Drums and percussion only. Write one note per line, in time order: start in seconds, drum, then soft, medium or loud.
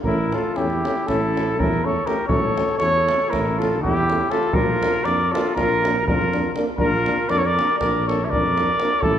0.04 davul low medium
0.32 davul high medium
0.56 davul high soft
0.70 davul high soft
0.85 davul high medium
0.98 davul high soft
1.08 davul high medium
1.08 davul low medium
1.37 davul high medium
1.60 davul low medium
1.73 davul high soft
2.07 davul high medium
2.29 davul low loud
2.58 davul high medium
2.69 davul high soft
2.80 davul high medium
2.95 davul high soft
3.09 davul high medium
3.22 davul high soft
3.33 davul high medium
3.33 davul low medium
3.48 davul high soft
3.62 davul high medium
3.73 davul high soft
3.85 davul low medium
3.97 davul high soft
4.10 davul high medium
4.21 davul high soft
4.32 davul high medium
4.43 davul high soft
4.53 davul low loud
4.83 davul high medium
5.05 davul high medium
5.21 davul high soft
5.35 davul high medium
5.46 davul high soft
5.57 davul high medium
5.57 davul low medium
5.85 davul high medium
6.08 davul low medium
6.22 davul high soft
6.33 davul high medium
6.56 davul high medium
6.78 davul low medium
7.06 davul high medium
7.29 davul high medium
7.45 davul high soft
7.59 davul high medium
7.70 davul high soft
7.81 davul high medium
7.81 davul low medium
8.09 davul high medium
8.33 davul low medium
8.46 davul high soft
8.58 davul high medium
8.80 davul high medium
9.02 davul low medium